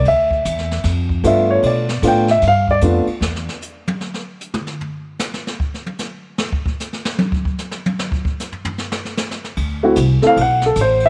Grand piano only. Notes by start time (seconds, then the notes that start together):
0.08 E5
1.24 A3 B3 D4 F4 E5
1.50 C#5
1.62 C#5
1.66 D5
2.03 A3 B3 D4 F4
2.07 G5
2.31 E5
2.48 F5
2.71 D5
2.82 A3 B3 D4 F4
9.83 A3 C4 E4 F#4
10.22 A3 C4 E4 A4
10.27 F5
10.41 F#5
10.66 A4
10.81 C5
11.06 E5